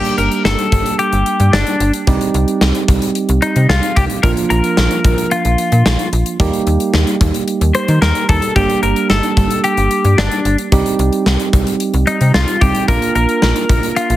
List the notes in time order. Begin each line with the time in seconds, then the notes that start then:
Already playing: G3 A#3 D4 G4
0.05 closed hi-hat
0.18 G1 A#4, closed hi-hat
0.32 closed hi-hat
0.45 G1 A4, snare
0.59 closed hi-hat
0.72 G1, kick, closed hi-hat
0.86 closed hi-hat
0.99 G4, closed hi-hat
1.13 G1, closed hi-hat
1.26 closed hi-hat
1.40 G2, closed hi-hat
1.53 G1 D4, snare
1.67 closed hi-hat
1.80 G1, closed hi-hat
1.94 closed hi-hat
2.07 C2 G3 C4 D#4 G4, kick, closed hi-hat
2.21 closed hi-hat
2.34 C2, closed hi-hat
2.48 closed hi-hat
2.61 C2, snare
2.75 closed hi-hat
2.88 C2, kick, closed hi-hat
3.02 closed hi-hat
3.15 closed hi-hat
3.29 C2, closed hi-hat
3.42 D#4, closed hi-hat
3.56 C3, closed hi-hat
3.69 C2 F4, snare
3.83 closed hi-hat
3.96 C2 G4, kick, closed hi-hat
4.10 closed hi-hat
4.23 A#1 F3 A#3 D4 F4 A#4, kick, closed hi-hat
4.37 closed hi-hat
4.50 A#1 A#4, closed hi-hat
4.64 closed hi-hat
4.77 A#1, snare
4.91 closed hi-hat
5.04 A#1, kick, closed hi-hat
5.18 closed hi-hat
5.31 F4, closed hi-hat
5.45 A#1, closed hi-hat
5.58 closed hi-hat
5.72 A#2, closed hi-hat
5.86 A#1, snare
5.99 closed hi-hat
6.13 A#1, closed hi-hat
6.26 closed hi-hat
6.40 D#2 G3 A#3 D#4 G4, kick, closed hi-hat
6.53 closed hi-hat
6.67 D#2, closed hi-hat
6.80 closed hi-hat
6.94 D#2, snare
7.07 closed hi-hat
7.21 D#2, kick, closed hi-hat
7.34 closed hi-hat
7.48 closed hi-hat
7.61 D#2, closed hi-hat
7.75 C5, closed hi-hat
7.88 D#3, closed hi-hat
8.02 D#2 A#4, snare
8.15 closed hi-hat
8.29 D#2 A4, kick, closed hi-hat
8.42 closed hi-hat
8.56 G1 G3 A#3 D4 G4, kick, closed hi-hat
8.70 closed hi-hat
8.83 G1 A#4, closed hi-hat
8.96 closed hi-hat
9.10 G1 A4, snare
9.23 closed hi-hat
9.37 G1, kick, closed hi-hat
9.50 closed hi-hat
9.64 G4, closed hi-hat
9.77 G1, closed hi-hat
9.91 closed hi-hat
10.04 G2, closed hi-hat
10.18 G1 D4, snare
10.32 closed hi-hat
10.45 G1, closed hi-hat
10.58 closed hi-hat
10.72 C2 G3 C4 D#4 G4, kick, closed hi-hat
10.86 closed hi-hat
10.99 C2, closed hi-hat
11.13 closed hi-hat
11.26 C2, snare
11.40 closed hi-hat
11.53 C2, kick, closed hi-hat
11.67 closed hi-hat
11.80 closed hi-hat
11.94 C2, closed hi-hat
12.07 D#4, closed hi-hat
12.21 C3, closed hi-hat
12.34 C2 F4, snare
12.48 closed hi-hat
12.61 C2 G3 C4 D#4 G4, kick, closed hi-hat
12.75 closed hi-hat
12.88 A#1 A#3 D4 F4 A#4, kick, closed hi-hat
13.02 closed hi-hat
13.15 A#1 A#4, closed hi-hat
13.29 closed hi-hat
13.42 A#1, snare
13.56 closed hi-hat
13.69 A#1, kick, closed hi-hat
13.83 closed hi-hat
13.96 F4, closed hi-hat
14.10 A#1, closed hi-hat